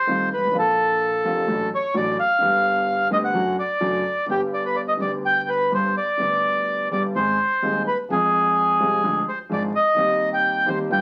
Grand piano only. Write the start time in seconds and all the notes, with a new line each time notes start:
0.07 C2 C3 D#3 A3 C4 F4
0.38 G1
0.43 G#1
0.48 A1 D3
0.53 A#1 A#2 F3 A#3 F4
1.24 F1 F2 D3 F3 A#3 F4
1.47 A1 A2 D3 F#3 A3 F#4
1.94 A1 A2 D3 F#3 A3 F#4
2.39 G1 G2 D3 G3 B3 G4
3.11 D2 D3 G3 B3 G4
3.34 F#2 D3 F#3 A3 F#4
3.81 F#2 D3 F#3 A3 F#4
4.26 G1 G2 D3 G3 B3
4.31 G4
4.98 D2 D3 G3 B3 G4
5.71 G1 G2 D3 G3 B3 G4
6.19 D2 D3 G3 B3 G4
6.91 G1 G2 D3 G3 B3 G4
7.15 G#1 G#2 D#3 G#3 C4 G#4
7.62 D#1 D#2 D#3 G#3 C4 G#4
8.09 F2 F3 G#3 C4 G#4
8.80 C2 C3 F3 G#3 C4 G#4
9.03 D2 D3 F3 G#3 D4 G#4
9.49 G#1 G#2 F3 G#3 D4 G#4
9.94 D#2 D#3 G3 C4
9.99 G4
10.66 D#2 D#3 G3 C4 G4
10.90 G1 G2 D3 G3 B3 F4